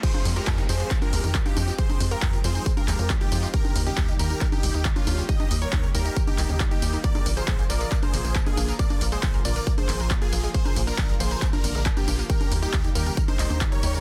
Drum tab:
CC |x---------------|----------------|----------------|----------------|
HH |xxoxxxoxxxoxxxo-|xxoxxxoxxxoxxxo-|xxoxxxoxxxoxxxo-|xxoxxxoxxxoxxxo-|
TB |xxxxxxxxxxxxxxxx|xxxxxxxxxxxxxxxx|xxxxxxxxxxxxxxxx|xxxxxxxxxxxxxxxx|
CP |----x---x---x---|----x-----x-x---|----x---x---x---|----x-----x-x---|
CG |-o-------o---oo-|-o-------o------|-o-------o---oo-|-o-------o------|
BD |o---o---o---o---|o---o---o---o---|o---o---o---o---|o---o---o---o---|

CC |----------------|----------------|----------------|----------------|
HH |xxoxxxoxxxoxxxo-|xxoxxxoxxxoxxxo-|xxoxxxoxxxoxxxo-|xxoxxxoxxxoxxxo-|
TB |xxxxxxxxxxxxxxxx|xxxxxxxxxxxxxxxx|xxxxxxxxxxxxxxxx|xxxxxxxxxxxxxxxx|
CP |----x---x---x---|----x-----x-x---|----x---x---x---|----x-----x-x---|
CG |-o-------o---oo-|-o-------o------|-o-------o---oo-|-o-------o-o----|
BD |o---o---o---o---|o---o---o---o---|o---o---o---o---|o---o---o---o---|